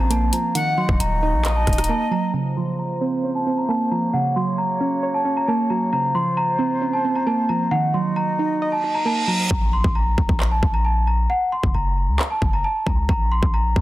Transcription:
0.00 0.31 A#1 loud
0.00 0.51 C#3 medium
0.00 0.10 F3 medium
0.00 2.17 A#3 medium
0.00 0.55 C4 medium
0.00 0.55 C#4 medium
0.00 0.53 F4 medium
0.00 0.53 C5 loud
0.10 0.55 A#3 loud
0.10 0.32 A5 medium
0.10 closed hi-hat medium
0.33 0.55 F3 medium
0.33 0.54 A#5 medium
0.33 closed hi-hat medium
0.55 1.67 D#3 medium
0.55 2.17 D#4 medium
0.55 2.17 F#4 medium
0.55 2.17 D#5 medium
0.55 0.76 F#5 loud
0.55 0.97 F#5 loud
0.55 closed hi-hat medium
0.78 1.90 F#3 medium
0.78 0.99 C6 medium
0.89 1.00 D#1 loud
0.89 kick loud
1.00 1.35 D#1 loud
1.00 1.53 A#5 medium
1.00 closed hi-hat loud
1.23 1.66 D#4 medium
1.34 1.65 A#1 loud
1.45 2.30 D#5 loud
1.45 2.35 D#5 medium
1.45 clap loud
1.45 closed hi-hat medium
1.56 1.77 A5 medium
1.67 1.90 D#1 loud
1.67 2.35 D#4 medium
1.67 kick medium
1.67 cross-stick medium
1.67 closed hi-hat soft
1.73 closed hi-hat medium
1.78 1.89 A#5 medium
1.78 cross-stick loud
1.78 closed hi-hat medium
1.84 closed hi-hat medium
1.89 2.34 A#3 medium
1.89 2.11 A5 medium
2.11 2.34 F#3 medium
2.11 2.33 A#5 medium
2.34 3.46 C#3 medium
2.34 7.68 C#3 medium
2.34 9.47 A#3 medium
2.34 4.12 F4 medium
2.34 4.12 C5 medium
2.34 2.55 A#5 medium
2.57 3.69 F3 medium
2.57 2.78 C6 medium
2.79 3.32 A#5 medium
3.01 3.45 C4 loud
3.24 4.13 C#4 medium
3.35 3.56 A5 medium
3.46 4.14 C4 medium
3.58 3.68 A#5 medium
3.69 4.13 A#3 loud
3.69 3.90 A5 medium
3.91 4.14 F3 medium
3.91 4.12 A#5 medium
4.13 5.25 C#3 medium
4.13 5.91 F#4 medium
4.13 5.91 C#5 medium
4.13 4.35 F#5 medium
4.36 5.48 F#3 medium
4.36 4.57 C6 medium
4.58 5.11 A#5 medium
4.81 5.24 C#4 medium
5.03 5.92 C#5 medium
5.14 5.35 A5 medium
5.25 5.92 C#4 medium
5.37 5.47 A#5 medium
5.48 5.93 A#3 loud
5.48 5.69 A5 medium
5.70 5.93 F#3 medium
5.70 5.91 A#5 medium
5.93 7.05 C#3 medium
5.93 7.70 F4 medium
5.93 7.70 C5 medium
5.93 6.14 A#5 loud
6.14 7.27 F3 medium
6.14 6.36 C6 medium
6.37 6.90 A#5 medium
6.59 7.03 C4 medium
6.82 7.71 C#4 medium
6.93 7.14 A5 medium
7.05 7.72 C4 medium
7.16 7.26 A#5 medium
7.27 7.71 A#3 loud
7.27 7.48 A5 medium
7.49 7.72 F3 medium
7.49 7.70 A#5 medium
7.71 8.83 D#3 medium
7.71 9.49 D#4 medium
7.71 9.49 F#4 medium
7.71 9.49 D#5 medium
7.71 7.93 F#5 loud
7.94 9.06 F#3 medium
7.94 8.15 C6 medium
8.16 8.69 A#5 medium
8.39 8.83 D#4 medium
8.61 9.51 D#5 medium
8.61 reverse cymbal medium
8.72 8.93 A5 medium
8.84 9.51 D#4 medium
8.95 9.05 A#5 medium
9.05 9.50 A#3 medium
9.05 9.27 A5 medium
9.27 9.50 F#3 medium
9.27 9.49 A#5 medium
9.50 9.83 A#1 loud
9.50 9.72 A#5 medium
9.50 kick loud
9.50 impact medium
9.73 9.94 C6 medium
9.84 10.17 A#1 loud
9.84 kick loud
9.95 10.48 A#5 medium
10.18 10.29 A#1 loud
10.18 kick medium
10.29 10.61 A#1 loud
10.29 kick loud
10.40 clap loud
10.51 10.73 A5 medium
10.63 11.27 A#1 loud
10.63 kick medium
10.74 10.84 A#5 medium
10.85 11.06 A5 medium
11.07 11.28 A#5 medium
11.30 11.51 F#5 loud
11.52 11.73 C6 medium
11.63 11.74 F#1 loud
11.63 kick loud
11.74 12.10 F#1 loud
11.74 12.27 A#5 medium
12.08 12.19 C#2 loud
12.19 clap loud
12.31 12.52 A5 medium
12.42 12.63 F#1 loud
12.42 kick medium
12.53 12.64 A#5 medium
12.64 12.85 A5 medium
12.87 13.08 C#2 loud
12.87 13.08 A#5 medium
12.87 kick loud
13.09 13.41 A#1 loud
13.09 13.30 A#5 loud
13.09 kick loud
13.32 13.53 C6 medium
13.43 13.75 A#1 loud
13.43 kick loud
13.54 13.81 A#5 loud
13.76 13.81 A#1 loud
13.76 kick medium

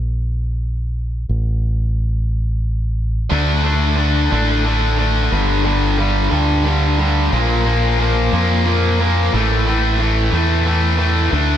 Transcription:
0.00 1.25 A#1 medium
1.29 3.27 A1 medium
3.30 4.28 D2 loud
3.30 3.62 D3 medium
3.30 3.63 A3 loud
3.30 3.64 D4 loud
3.63 3.95 D3 medium
3.63 3.97 A3 medium
3.63 3.97 D4 loud
3.96 4.30 D3 medium
3.96 4.31 A3 medium
3.96 4.32 D4 medium
4.31 5.28 A1 loud
4.31 4.63 D3 medium
4.31 4.64 A3 medium
4.31 4.65 D4 loud
4.64 4.96 D3 medium
4.64 4.97 A3 medium
4.64 4.98 D4 medium
4.97 5.29 D3 medium
4.97 5.29 A3 medium
4.97 7.32 D4 medium
5.30 6.28 G1 loud
5.30 5.62 G2 loud
5.30 5.63 D3 loud
5.30 5.64 G3 loud
5.63 5.97 G2 medium
5.63 5.97 D3 medium
5.63 5.98 G3 medium
5.98 6.28 G2 medium
5.98 6.29 D3 medium
5.98 6.30 G3 loud
6.30 7.28 D2 medium
6.30 6.63 G2 medium
6.30 6.64 D3 medium
6.30 6.65 G3 loud
6.64 6.96 G2 medium
6.64 6.97 D3 medium
6.64 6.97 G3 medium
6.98 7.30 G2 medium
6.98 7.30 D3 medium
6.98 7.30 G3 medium
7.31 8.28 A#1 loud
7.31 7.63 A#2 medium
7.31 7.64 F3 loud
7.31 7.65 A#3 medium
7.65 7.97 A#2 medium
7.65 7.98 F3 medium
7.65 7.99 A#3 loud
7.99 8.31 A#2 medium
7.99 8.32 F3 medium
7.99 8.32 A#3 loud
8.32 9.29 F2 medium
8.32 8.64 A#2 medium
8.32 8.65 F3 medium
8.32 8.66 A#3 loud
8.65 8.99 A#2 medium
8.65 8.99 F3 medium
8.65 9.00 A#3 medium
9.00 9.31 A#2 medium
9.00 9.31 F3 medium
9.00 9.31 A#3 medium
9.32 10.29 A1 loud
9.32 9.64 A2 medium
9.32 9.65 E3 loud
9.32 9.67 A3 loud
9.65 9.97 A2 medium
9.65 9.98 E3 medium
9.65 10.00 A3 loud
9.99 10.30 A2 medium
9.99 10.31 E3 medium
9.99 10.32 A3 medium
10.31 11.28 E2 medium
10.31 10.64 A2 medium
10.31 10.64 E3 medium
10.31 10.66 A3 loud
10.65 10.96 A2 medium
10.65 10.97 E3 medium
10.65 10.99 A3 medium
10.98 11.30 A2 medium
10.98 11.30 E3 medium
10.98 11.31 A3 medium
11.30 11.57 D2 loud
11.30 11.57 D3 medium
11.30 11.57 A3 loud
11.30 11.57 D4 loud

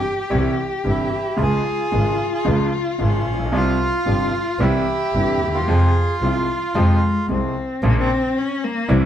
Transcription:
0.00 0.15 G4 medium
0.00 1.40 G4 medium
0.21 0.32 G4 medium
0.30 0.54 C2 medium
0.30 0.54 C3 medium
0.30 0.54 E3 soft
0.30 0.53 G3 soft
0.30 0.54 E4 medium
0.84 1.07 G1 soft
0.84 1.08 G1 soft
0.84 1.07 G2 soft
0.84 1.07 C3 soft
0.84 1.08 E3 soft
0.84 1.07 G3 soft
0.84 1.08 E4 soft
0.89 1.43 E4 medium
1.36 1.61 C#2 medium
1.36 1.60 C#3 medium
1.36 1.61 F3 soft
1.36 1.61 G#3 soft
1.36 1.61 F4 medium
1.36 3.51 F4 medium
1.42 2.33 G#4 medium
1.92 2.15 G#1 soft
1.92 2.16 G#1 soft
1.92 2.15 G#2 soft
1.92 2.15 C#3 soft
1.92 2.15 F3 soft
1.92 2.15 G#3 soft
1.92 2.15 F4 soft
2.34 2.46 G#4 medium
2.45 2.68 C#2 medium
2.45 2.69 C#2 medium
2.45 2.68 C#3 medium
2.45 2.68 F3 medium
2.45 2.68 G#3 medium
2.45 2.68 F4 medium
2.98 3.22 G#1 soft
2.98 3.23 G#1 soft
2.98 3.22 G#2 soft
2.98 3.22 C#3 soft
2.98 3.22 F3 soft
2.98 3.22 G#3 soft
2.98 3.22 F4 soft
3.04 3.57 C#4 medium
3.27 3.53 A#1 soft
3.34 3.40 A1 soft
3.39 3.47 A#1 soft
3.45 3.53 B1 medium
3.52 3.76 C2 medium
3.52 3.75 C3 medium
3.52 3.75 F3 medium
3.52 3.76 G3 medium
3.52 4.61 F4 medium
3.52 3.76 F4 medium
3.57 4.65 F4 medium
4.06 4.29 G1 medium
4.06 4.30 G1 soft
4.06 4.29 G2 soft
4.06 4.29 C3 soft
4.06 4.29 F3 soft
4.06 4.29 G3 soft
4.06 4.30 F4 soft
4.59 4.82 C2 medium
4.59 4.83 C2 medium
4.59 4.83 C3 medium
4.59 4.83 E3 medium
4.59 4.83 G3 medium
4.59 4.83 E4 medium
4.59 5.57 E4 medium
4.59 5.70 G4 medium
5.14 5.36 G1 soft
5.14 5.37 G1 soft
5.14 5.37 G2 soft
5.14 5.37 C3 soft
5.14 5.37 E3 soft
5.14 5.37 G3 soft
5.14 5.37 E4 soft
5.40 5.66 D#2 soft
5.47 5.54 D2 soft
5.54 5.61 D#2 soft
5.54 7.26 F4 medium
5.61 5.68 E2 medium
5.66 5.90 F2 medium
5.66 5.91 F2 medium
5.66 5.90 C3 medium
5.66 5.90 F3 medium
5.66 5.90 G#3 medium
5.66 5.91 F4 medium
5.66 6.22 G#4 medium
6.21 6.44 C2 soft
6.21 6.45 C3 soft
6.21 6.44 F3 soft
6.21 6.45 G#3 soft
6.21 6.78 F4 medium
6.21 6.45 F4 soft
6.75 6.98 F2 medium
6.75 6.98 C3 medium
6.75 6.99 F3 medium
6.75 6.98 G#3 medium
6.75 7.32 G#3 medium
6.75 6.98 F4 medium
7.28 7.53 C2 soft
7.28 7.53 C3 soft
7.28 7.53 F3 soft
7.28 7.53 G#3 soft
7.28 7.85 C4 medium
7.28 7.53 F4 soft
7.83 8.06 A#1 medium
7.83 8.06 A#2 medium
7.83 8.06 C#3 medium
7.83 8.06 F3 medium
7.83 8.06 A#3 medium
7.83 7.98 A#3 medium
7.83 8.06 F4 medium
7.98 8.39 C4 medium
8.38 8.65 C#4 medium
8.64 8.93 A#3 medium
8.88 9.05 C2 medium
8.88 9.05 C3 medium
8.88 9.05 E3 medium
8.88 9.05 G3 medium
8.88 9.05 E4 medium

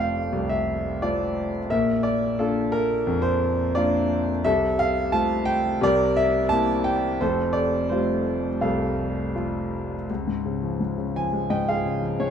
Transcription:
0.00 1.67 F1 soft
0.00 1.67 F2 soft
0.00 0.17 A3 soft
0.00 0.18 C4 soft
0.00 0.18 F4 soft
0.00 0.29 A4 soft
0.00 1.73 C5 medium
0.00 1.02 D5 medium
0.00 0.52 F5 medium
0.00 1.72 G5 medium
0.32 1.67 C2 medium
0.49 1.04 E5 medium
1.02 1.57 A3 soft
1.02 1.57 C4 soft
1.02 1.57 F4 soft
1.02 1.50 D5 medium
1.70 4.40 A#1 medium
1.70 4.41 A#2 medium
1.70 2.71 A#4 medium
1.70 2.06 E5 medium
2.03 2.39 D5 medium
2.39 2.94 A#3 soft
2.39 2.94 D4 soft
2.39 2.94 F4 soft
2.39 2.74 A4 medium
2.72 3.26 A#4 medium
3.07 4.40 F2 medium
3.22 3.77 C5 medium
3.75 4.31 A#3 medium
3.75 4.31 D4 soft
3.75 4.31 F4 medium
3.75 4.23 D5 medium
4.44 5.78 C2 medium
4.44 5.78 C3 medium
4.44 5.78 A4 medium
4.44 4.79 E5 loud
4.79 5.14 F5 loud
5.12 5.68 A3 medium
5.12 5.68 C4 soft
5.12 5.68 F4 medium
5.12 5.48 A5 loud
5.45 5.82 G5 loud
5.81 7.17 C2 medium
5.81 7.17 C3 medium
5.81 7.18 A#4 medium
5.81 6.19 D5 loud
6.16 6.49 E5 loud
6.49 7.07 A#3 medium
6.49 7.08 C4 soft
6.49 7.08 E4 medium
6.49 6.86 A5 loud
6.84 7.21 G5 medium
7.21 10.06 F1 medium
7.21 10.05 F2 medium
7.21 8.58 A4 medium
7.21 7.57 C5 medium
7.53 7.87 D5 medium
7.89 8.48 G3 soft
7.89 8.48 A3 soft
7.89 8.48 F4 soft
7.89 8.57 C5 medium
8.61 10.05 C2 medium
8.61 10.06 A4 medium
8.61 9.31 F5 medium
9.35 9.94 G3 soft
9.35 9.95 A3 soft
9.35 9.95 F4 soft
10.10 12.30 C#2 soft
10.27 10.79 G#2 soft
10.45 10.96 C#3 soft
10.63 11.15 F3 soft
10.80 11.49 G#2 soft
10.98 11.84 C#3 soft
11.16 12.01 F3 soft
11.16 11.52 G#5 medium
11.33 12.30 G#3 soft
11.50 12.19 G#2 medium
11.50 12.30 D#5 medium
11.50 11.68 G5 medium
11.68 12.30 F4 soft
11.68 12.30 G#4 medium
11.68 12.22 F5 medium
11.85 12.30 C#3 soft
12.02 12.30 F3 soft
12.20 12.30 G#2 soft
12.20 12.30 C#5 medium

